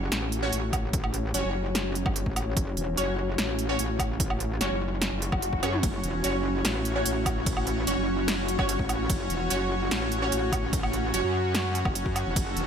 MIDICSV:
0, 0, Header, 1, 7, 480
1, 0, Start_track
1, 0, Key_signature, 3, "minor"
1, 0, Tempo, 408163
1, 1098, Time_signature, 4, 2, 24, 8
1, 14898, End_track
2, 0, Start_track
2, 0, Title_t, "Ambient pad"
2, 0, Program_c, 0, 92
2, 0, Note_on_c, 0, 61, 93
2, 0, Note_on_c, 0, 66, 74
2, 0, Note_on_c, 0, 73, 80
2, 7586, Note_on_c, 0, 78, 77
2, 7611, Note_off_c, 0, 73, 0
2, 14898, Note_off_c, 0, 61, 0
2, 14898, Note_off_c, 0, 66, 0
2, 14898, Note_off_c, 0, 78, 0
2, 14898, End_track
3, 0, Start_track
3, 0, Title_t, "Supersaw synth"
3, 0, Program_c, 1, 81
3, 6857, Note_on_c, 1, 66, 74
3, 6858, Note_on_c, 1, 61, 76
3, 6858, Note_on_c, 1, 73, 90
3, 14515, Note_off_c, 1, 73, 0
3, 14537, Note_on_c, 1, 69, 88
3, 14898, Note_off_c, 1, 61, 0
3, 14898, Note_off_c, 1, 66, 0
3, 14898, Note_off_c, 1, 69, 0
3, 14898, End_track
4, 0, Start_track
4, 0, Title_t, "Synth stab"
4, 0, Program_c, 2, 62
4, 500, Note_on_c, 2, 61, 104
4, 501, Note_on_c, 2, 66, 93
4, 501, Note_on_c, 2, 73, 112
4, 640, Note_off_c, 2, 61, 0
4, 640, Note_off_c, 2, 73, 0
4, 641, Note_off_c, 2, 66, 0
4, 1578, Note_on_c, 2, 61, 102
4, 1578, Note_on_c, 2, 66, 92
4, 1579, Note_on_c, 2, 73, 110
4, 1806, Note_off_c, 2, 61, 0
4, 1806, Note_off_c, 2, 66, 0
4, 1806, Note_off_c, 2, 73, 0
4, 3497, Note_on_c, 2, 61, 100
4, 3497, Note_on_c, 2, 66, 89
4, 3497, Note_on_c, 2, 73, 108
4, 3725, Note_off_c, 2, 61, 0
4, 3725, Note_off_c, 2, 66, 0
4, 3725, Note_off_c, 2, 73, 0
4, 4339, Note_on_c, 2, 61, 101
4, 4339, Note_on_c, 2, 66, 95
4, 4339, Note_on_c, 2, 73, 115
4, 4480, Note_off_c, 2, 61, 0
4, 4480, Note_off_c, 2, 66, 0
4, 4480, Note_off_c, 2, 73, 0
4, 5417, Note_on_c, 2, 61, 103
4, 5417, Note_on_c, 2, 66, 90
4, 5417, Note_on_c, 2, 73, 108
4, 5645, Note_off_c, 2, 61, 0
4, 5645, Note_off_c, 2, 66, 0
4, 5645, Note_off_c, 2, 73, 0
4, 6617, Note_on_c, 2, 66, 87
4, 6618, Note_on_c, 2, 61, 94
4, 6618, Note_on_c, 2, 73, 105
4, 6761, Note_off_c, 2, 66, 0
4, 6761, Note_off_c, 2, 73, 0
4, 6762, Note_off_c, 2, 61, 0
4, 7338, Note_on_c, 2, 61, 104
4, 7338, Note_on_c, 2, 66, 90
4, 7338, Note_on_c, 2, 73, 111
4, 7565, Note_off_c, 2, 66, 0
4, 7565, Note_off_c, 2, 73, 0
4, 7566, Note_off_c, 2, 61, 0
4, 8179, Note_on_c, 2, 61, 98
4, 8180, Note_on_c, 2, 66, 92
4, 8180, Note_on_c, 2, 73, 118
4, 8320, Note_off_c, 2, 61, 0
4, 8320, Note_off_c, 2, 66, 0
4, 8320, Note_off_c, 2, 73, 0
4, 9257, Note_on_c, 2, 66, 92
4, 9258, Note_on_c, 2, 61, 96
4, 9258, Note_on_c, 2, 73, 110
4, 9485, Note_off_c, 2, 61, 0
4, 9485, Note_off_c, 2, 66, 0
4, 9485, Note_off_c, 2, 73, 0
4, 10098, Note_on_c, 2, 61, 104
4, 10098, Note_on_c, 2, 73, 117
4, 10099, Note_on_c, 2, 66, 93
4, 10240, Note_off_c, 2, 61, 0
4, 10240, Note_off_c, 2, 66, 0
4, 10240, Note_off_c, 2, 73, 0
4, 11177, Note_on_c, 2, 66, 94
4, 11177, Note_on_c, 2, 73, 108
4, 11178, Note_on_c, 2, 61, 102
4, 11405, Note_off_c, 2, 61, 0
4, 11405, Note_off_c, 2, 66, 0
4, 11405, Note_off_c, 2, 73, 0
4, 12020, Note_on_c, 2, 61, 102
4, 12020, Note_on_c, 2, 66, 93
4, 12020, Note_on_c, 2, 73, 115
4, 12160, Note_off_c, 2, 61, 0
4, 12160, Note_off_c, 2, 66, 0
4, 12160, Note_off_c, 2, 73, 0
4, 13098, Note_on_c, 2, 61, 99
4, 13098, Note_on_c, 2, 66, 91
4, 13098, Note_on_c, 2, 73, 108
4, 13325, Note_off_c, 2, 61, 0
4, 13325, Note_off_c, 2, 66, 0
4, 13325, Note_off_c, 2, 73, 0
4, 14898, End_track
5, 0, Start_track
5, 0, Title_t, "Wobble bass"
5, 0, Program_c, 3, 39
5, 0, Note_on_c, 3, 30, 105
5, 120, Note_off_c, 3, 30, 0
5, 140, Note_on_c, 3, 33, 100
5, 600, Note_off_c, 3, 33, 0
5, 620, Note_on_c, 3, 33, 94
5, 1560, Note_off_c, 3, 33, 0
5, 1580, Note_on_c, 3, 30, 102
5, 1682, Note_off_c, 3, 30, 0
5, 1702, Note_on_c, 3, 30, 97
5, 2401, Note_off_c, 3, 30, 0
5, 2420, Note_on_c, 3, 31, 103
5, 2641, Note_off_c, 3, 31, 0
5, 2660, Note_on_c, 3, 33, 102
5, 2999, Note_off_c, 3, 33, 0
5, 3018, Note_on_c, 3, 30, 102
5, 3239, Note_off_c, 3, 30, 0
5, 3258, Note_on_c, 3, 28, 94
5, 3479, Note_off_c, 3, 28, 0
5, 3498, Note_on_c, 3, 30, 97
5, 3959, Note_off_c, 3, 30, 0
5, 3978, Note_on_c, 3, 33, 98
5, 4439, Note_off_c, 3, 33, 0
5, 4458, Note_on_c, 3, 33, 98
5, 5399, Note_off_c, 3, 33, 0
5, 5418, Note_on_c, 3, 30, 100
5, 5521, Note_off_c, 3, 30, 0
5, 5541, Note_on_c, 3, 30, 101
5, 6001, Note_off_c, 3, 30, 0
5, 6020, Note_on_c, 3, 30, 102
5, 6240, Note_off_c, 3, 30, 0
5, 6260, Note_on_c, 3, 30, 100
5, 6599, Note_off_c, 3, 30, 0
5, 6618, Note_on_c, 3, 42, 102
5, 6839, Note_off_c, 3, 42, 0
5, 6858, Note_on_c, 3, 30, 98
5, 7079, Note_off_c, 3, 30, 0
5, 7099, Note_on_c, 3, 28, 95
5, 7319, Note_off_c, 3, 28, 0
5, 7339, Note_on_c, 3, 30, 96
5, 7799, Note_off_c, 3, 30, 0
5, 7819, Note_on_c, 3, 33, 99
5, 8280, Note_off_c, 3, 33, 0
5, 8298, Note_on_c, 3, 33, 100
5, 9239, Note_off_c, 3, 33, 0
5, 9258, Note_on_c, 3, 30, 100
5, 9360, Note_off_c, 3, 30, 0
5, 9379, Note_on_c, 3, 30, 100
5, 10080, Note_off_c, 3, 30, 0
5, 10100, Note_on_c, 3, 31, 100
5, 10320, Note_off_c, 3, 31, 0
5, 10340, Note_on_c, 3, 33, 100
5, 10679, Note_off_c, 3, 33, 0
5, 10698, Note_on_c, 3, 30, 101
5, 10919, Note_off_c, 3, 30, 0
5, 10938, Note_on_c, 3, 28, 99
5, 11159, Note_off_c, 3, 28, 0
5, 11178, Note_on_c, 3, 30, 100
5, 11639, Note_off_c, 3, 30, 0
5, 11659, Note_on_c, 3, 33, 98
5, 12119, Note_off_c, 3, 33, 0
5, 12138, Note_on_c, 3, 33, 102
5, 13079, Note_off_c, 3, 33, 0
5, 13098, Note_on_c, 3, 30, 100
5, 13200, Note_off_c, 3, 30, 0
5, 13220, Note_on_c, 3, 42, 97
5, 13921, Note_off_c, 3, 42, 0
5, 13940, Note_on_c, 3, 30, 99
5, 14160, Note_off_c, 3, 30, 0
5, 14180, Note_on_c, 3, 42, 102
5, 14400, Note_off_c, 3, 42, 0
5, 14420, Note_on_c, 3, 28, 100
5, 14519, Note_off_c, 3, 28, 0
5, 14538, Note_on_c, 3, 30, 101
5, 14759, Note_off_c, 3, 30, 0
5, 14777, Note_on_c, 3, 28, 93
5, 14898, Note_off_c, 3, 28, 0
5, 14898, End_track
6, 0, Start_track
6, 0, Title_t, "Swell"
6, 0, Program_c, 4, 103
6, 5898, Note_on_c, 4, 60, 62
6, 6858, Note_off_c, 4, 60, 0
6, 14898, End_track
7, 0, Start_track
7, 0, Title_t, "Drums"
7, 139, Note_on_c, 9, 38, 118
7, 139, Note_on_c, 9, 42, 76
7, 256, Note_off_c, 9, 38, 0
7, 256, Note_off_c, 9, 42, 0
7, 378, Note_on_c, 9, 42, 52
7, 496, Note_off_c, 9, 42, 0
7, 618, Note_on_c, 9, 42, 77
7, 736, Note_off_c, 9, 42, 0
7, 858, Note_on_c, 9, 42, 53
7, 858, Note_on_c, 9, 77, 63
7, 859, Note_on_c, 9, 36, 66
7, 976, Note_off_c, 9, 36, 0
7, 976, Note_off_c, 9, 42, 0
7, 976, Note_off_c, 9, 77, 0
7, 1098, Note_on_c, 9, 42, 74
7, 1099, Note_on_c, 9, 36, 123
7, 1216, Note_off_c, 9, 36, 0
7, 1216, Note_off_c, 9, 42, 0
7, 1219, Note_on_c, 9, 77, 65
7, 1337, Note_off_c, 9, 77, 0
7, 1337, Note_on_c, 9, 42, 50
7, 1455, Note_off_c, 9, 42, 0
7, 1578, Note_on_c, 9, 42, 80
7, 1696, Note_off_c, 9, 42, 0
7, 2058, Note_on_c, 9, 38, 117
7, 2058, Note_on_c, 9, 42, 80
7, 2176, Note_off_c, 9, 38, 0
7, 2176, Note_off_c, 9, 42, 0
7, 2298, Note_on_c, 9, 42, 52
7, 2416, Note_off_c, 9, 42, 0
7, 2420, Note_on_c, 9, 36, 107
7, 2420, Note_on_c, 9, 77, 64
7, 2537, Note_off_c, 9, 77, 0
7, 2538, Note_off_c, 9, 36, 0
7, 2538, Note_on_c, 9, 42, 76
7, 2655, Note_off_c, 9, 42, 0
7, 2660, Note_on_c, 9, 36, 65
7, 2778, Note_off_c, 9, 36, 0
7, 2779, Note_on_c, 9, 42, 54
7, 2779, Note_on_c, 9, 77, 67
7, 2896, Note_off_c, 9, 42, 0
7, 2896, Note_off_c, 9, 77, 0
7, 3018, Note_on_c, 9, 36, 123
7, 3019, Note_on_c, 9, 42, 81
7, 3135, Note_off_c, 9, 36, 0
7, 3136, Note_off_c, 9, 42, 0
7, 3258, Note_on_c, 9, 42, 49
7, 3376, Note_off_c, 9, 42, 0
7, 3498, Note_on_c, 9, 42, 80
7, 3616, Note_off_c, 9, 42, 0
7, 3978, Note_on_c, 9, 38, 115
7, 3978, Note_on_c, 9, 42, 79
7, 4096, Note_off_c, 9, 38, 0
7, 4096, Note_off_c, 9, 42, 0
7, 4218, Note_on_c, 9, 42, 52
7, 4335, Note_off_c, 9, 42, 0
7, 4458, Note_on_c, 9, 42, 81
7, 4575, Note_off_c, 9, 42, 0
7, 4698, Note_on_c, 9, 36, 60
7, 4699, Note_on_c, 9, 42, 53
7, 4699, Note_on_c, 9, 77, 69
7, 4815, Note_off_c, 9, 36, 0
7, 4816, Note_off_c, 9, 42, 0
7, 4816, Note_off_c, 9, 77, 0
7, 4938, Note_on_c, 9, 36, 121
7, 4938, Note_on_c, 9, 42, 83
7, 5055, Note_off_c, 9, 36, 0
7, 5056, Note_off_c, 9, 42, 0
7, 5060, Note_on_c, 9, 77, 62
7, 5178, Note_off_c, 9, 77, 0
7, 5178, Note_on_c, 9, 42, 53
7, 5296, Note_off_c, 9, 42, 0
7, 5419, Note_on_c, 9, 38, 61
7, 5419, Note_on_c, 9, 42, 84
7, 5536, Note_off_c, 9, 38, 0
7, 5536, Note_off_c, 9, 42, 0
7, 5898, Note_on_c, 9, 38, 115
7, 5898, Note_on_c, 9, 42, 82
7, 6016, Note_off_c, 9, 38, 0
7, 6016, Note_off_c, 9, 42, 0
7, 6138, Note_on_c, 9, 42, 54
7, 6256, Note_off_c, 9, 42, 0
7, 6260, Note_on_c, 9, 36, 106
7, 6260, Note_on_c, 9, 77, 64
7, 6378, Note_off_c, 9, 36, 0
7, 6378, Note_off_c, 9, 77, 0
7, 6379, Note_on_c, 9, 42, 78
7, 6496, Note_off_c, 9, 42, 0
7, 6500, Note_on_c, 9, 36, 63
7, 6618, Note_off_c, 9, 36, 0
7, 6619, Note_on_c, 9, 42, 55
7, 6619, Note_on_c, 9, 48, 66
7, 6619, Note_on_c, 9, 77, 66
7, 6736, Note_off_c, 9, 42, 0
7, 6736, Note_off_c, 9, 48, 0
7, 6736, Note_off_c, 9, 77, 0
7, 6740, Note_on_c, 9, 47, 75
7, 6857, Note_off_c, 9, 47, 0
7, 6858, Note_on_c, 9, 36, 127
7, 6858, Note_on_c, 9, 42, 85
7, 6858, Note_on_c, 9, 51, 72
7, 6976, Note_off_c, 9, 36, 0
7, 6976, Note_off_c, 9, 42, 0
7, 6976, Note_off_c, 9, 51, 0
7, 7098, Note_on_c, 9, 42, 54
7, 7216, Note_off_c, 9, 42, 0
7, 7338, Note_on_c, 9, 42, 84
7, 7338, Note_on_c, 9, 51, 49
7, 7455, Note_off_c, 9, 42, 0
7, 7455, Note_off_c, 9, 51, 0
7, 7817, Note_on_c, 9, 38, 120
7, 7817, Note_on_c, 9, 42, 81
7, 7817, Note_on_c, 9, 51, 69
7, 7935, Note_off_c, 9, 38, 0
7, 7935, Note_off_c, 9, 42, 0
7, 7935, Note_off_c, 9, 51, 0
7, 8058, Note_on_c, 9, 42, 56
7, 8175, Note_off_c, 9, 42, 0
7, 8297, Note_on_c, 9, 42, 87
7, 8297, Note_on_c, 9, 51, 49
7, 8415, Note_off_c, 9, 42, 0
7, 8415, Note_off_c, 9, 51, 0
7, 8537, Note_on_c, 9, 42, 55
7, 8537, Note_on_c, 9, 77, 63
7, 8538, Note_on_c, 9, 36, 66
7, 8655, Note_off_c, 9, 36, 0
7, 8655, Note_off_c, 9, 42, 0
7, 8655, Note_off_c, 9, 77, 0
7, 8778, Note_on_c, 9, 36, 127
7, 8778, Note_on_c, 9, 42, 88
7, 8778, Note_on_c, 9, 51, 66
7, 8895, Note_off_c, 9, 36, 0
7, 8896, Note_off_c, 9, 42, 0
7, 8896, Note_off_c, 9, 51, 0
7, 8899, Note_on_c, 9, 77, 63
7, 9017, Note_off_c, 9, 77, 0
7, 9018, Note_on_c, 9, 42, 54
7, 9135, Note_off_c, 9, 42, 0
7, 9257, Note_on_c, 9, 42, 85
7, 9257, Note_on_c, 9, 51, 49
7, 9375, Note_off_c, 9, 42, 0
7, 9375, Note_off_c, 9, 51, 0
7, 9737, Note_on_c, 9, 38, 127
7, 9737, Note_on_c, 9, 42, 84
7, 9737, Note_on_c, 9, 51, 68
7, 9855, Note_off_c, 9, 38, 0
7, 9855, Note_off_c, 9, 42, 0
7, 9855, Note_off_c, 9, 51, 0
7, 9978, Note_on_c, 9, 42, 58
7, 10095, Note_off_c, 9, 42, 0
7, 10099, Note_on_c, 9, 36, 113
7, 10100, Note_on_c, 9, 77, 59
7, 10217, Note_off_c, 9, 36, 0
7, 10217, Note_off_c, 9, 77, 0
7, 10218, Note_on_c, 9, 42, 87
7, 10218, Note_on_c, 9, 51, 47
7, 10336, Note_off_c, 9, 42, 0
7, 10336, Note_off_c, 9, 51, 0
7, 10340, Note_on_c, 9, 36, 69
7, 10457, Note_off_c, 9, 36, 0
7, 10458, Note_on_c, 9, 42, 60
7, 10458, Note_on_c, 9, 77, 62
7, 10575, Note_off_c, 9, 42, 0
7, 10575, Note_off_c, 9, 77, 0
7, 10697, Note_on_c, 9, 36, 124
7, 10697, Note_on_c, 9, 42, 82
7, 10697, Note_on_c, 9, 51, 66
7, 10815, Note_off_c, 9, 36, 0
7, 10815, Note_off_c, 9, 42, 0
7, 10815, Note_off_c, 9, 51, 0
7, 10937, Note_on_c, 9, 42, 55
7, 11055, Note_off_c, 9, 42, 0
7, 11177, Note_on_c, 9, 42, 84
7, 11177, Note_on_c, 9, 51, 46
7, 11295, Note_off_c, 9, 42, 0
7, 11295, Note_off_c, 9, 51, 0
7, 11658, Note_on_c, 9, 38, 127
7, 11658, Note_on_c, 9, 42, 85
7, 11658, Note_on_c, 9, 51, 64
7, 11775, Note_off_c, 9, 38, 0
7, 11775, Note_off_c, 9, 42, 0
7, 11775, Note_off_c, 9, 51, 0
7, 11898, Note_on_c, 9, 42, 55
7, 12015, Note_off_c, 9, 42, 0
7, 12138, Note_on_c, 9, 42, 83
7, 12138, Note_on_c, 9, 51, 48
7, 12255, Note_off_c, 9, 42, 0
7, 12255, Note_off_c, 9, 51, 0
7, 12378, Note_on_c, 9, 36, 67
7, 12378, Note_on_c, 9, 42, 57
7, 12378, Note_on_c, 9, 77, 60
7, 12495, Note_off_c, 9, 36, 0
7, 12496, Note_off_c, 9, 42, 0
7, 12496, Note_off_c, 9, 77, 0
7, 12618, Note_on_c, 9, 36, 127
7, 12618, Note_on_c, 9, 42, 79
7, 12618, Note_on_c, 9, 51, 63
7, 12735, Note_off_c, 9, 36, 0
7, 12735, Note_off_c, 9, 42, 0
7, 12735, Note_off_c, 9, 51, 0
7, 12741, Note_on_c, 9, 77, 60
7, 12858, Note_off_c, 9, 77, 0
7, 12859, Note_on_c, 9, 42, 50
7, 12976, Note_off_c, 9, 42, 0
7, 13099, Note_on_c, 9, 42, 77
7, 13099, Note_on_c, 9, 51, 46
7, 13216, Note_off_c, 9, 42, 0
7, 13216, Note_off_c, 9, 51, 0
7, 13578, Note_on_c, 9, 38, 127
7, 13578, Note_on_c, 9, 42, 82
7, 13578, Note_on_c, 9, 51, 63
7, 13696, Note_off_c, 9, 38, 0
7, 13696, Note_off_c, 9, 42, 0
7, 13696, Note_off_c, 9, 51, 0
7, 13818, Note_on_c, 9, 42, 53
7, 13936, Note_off_c, 9, 42, 0
7, 13940, Note_on_c, 9, 36, 118
7, 13940, Note_on_c, 9, 77, 59
7, 14057, Note_off_c, 9, 36, 0
7, 14057, Note_off_c, 9, 77, 0
7, 14058, Note_on_c, 9, 42, 78
7, 14058, Note_on_c, 9, 51, 45
7, 14176, Note_off_c, 9, 42, 0
7, 14176, Note_off_c, 9, 51, 0
7, 14180, Note_on_c, 9, 36, 66
7, 14297, Note_off_c, 9, 36, 0
7, 14298, Note_on_c, 9, 42, 56
7, 14298, Note_on_c, 9, 77, 63
7, 14415, Note_off_c, 9, 42, 0
7, 14415, Note_off_c, 9, 77, 0
7, 14538, Note_on_c, 9, 36, 121
7, 14538, Note_on_c, 9, 42, 77
7, 14538, Note_on_c, 9, 51, 65
7, 14655, Note_off_c, 9, 36, 0
7, 14656, Note_off_c, 9, 42, 0
7, 14656, Note_off_c, 9, 51, 0
7, 14778, Note_on_c, 9, 42, 53
7, 14895, Note_off_c, 9, 42, 0
7, 14898, End_track
0, 0, End_of_file